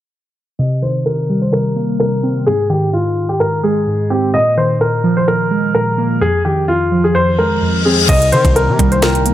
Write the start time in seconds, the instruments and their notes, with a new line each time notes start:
0.59 synth keys C3, grand piano D#5
0.82 synth keys D#3, grand piano C5
1.06 synth keys C3, grand piano A#4
1.29 synth keys G3
1.42 grand piano C5
1.53 synth keys C3, grand piano A#4
1.76 synth keys A#3
2.00 synth keys C3, grand piano A#4
2.23 synth keys C4
2.47 synth keys G#2, grand piano G#4
2.70 synth keys D#3, grand piano G4
2.93 synth keys G#2, grand piano F4
3.29 grand piano G4
3.40 synth keys G#2, grand piano A#4
3.63 synth keys G#3, grand piano G#4
3.87 synth keys G#2
4.10 synth keys C4, grand piano G4
4.34 synth keys A#2, grand piano D#5
4.57 synth keys D#3, grand piano C5
4.81 synth keys A#2, grand piano A#4
5.04 synth keys F3
5.17 grand piano C5
5.27 synth keys A#2, grand piano A#4
5.51 synth keys G#3
5.75 synth keys A#2, grand piano A#4
5.98 synth keys A#3
6.21 synth keys F2, grand piano G#4
6.45 synth keys D#3, grand piano G4
6.68 synth keys F2, grand piano F4
6.92 synth keys F3
7.04 grand piano G#4
7.15 synth keys F2, grand piano C5, reverse cymbal
7.39 synth keys G#3, grand piano A#4
7.62 synth keys F2
7.85 synth keys C4, grand piano G#4
8.09 808-style bass C2, synth keys C3, ambient pad A#3 C4 D#4 G5, grand piano D#5, kick, closed hi-hat, crash
8.22 closed hi-hat
8.32 synth keys D#3, 808-style bass D#3, grand piano C5, closed hi-hat
8.45 808-style bass C2, kick, closed hi-hat
8.56 synth keys C3, grand piano A#4, closed hi-hat
8.68 808-style bass C3
8.79 808-style bass C2, synth keys G3, kick, closed hi-hat
8.92 grand piano C5, closed hi-hat
9.02 synth keys C3, grand piano A#4, finger snap, snare, closed hi-hat
9.15 closed hi-hat
9.26 synth keys A#3, closed hi-hat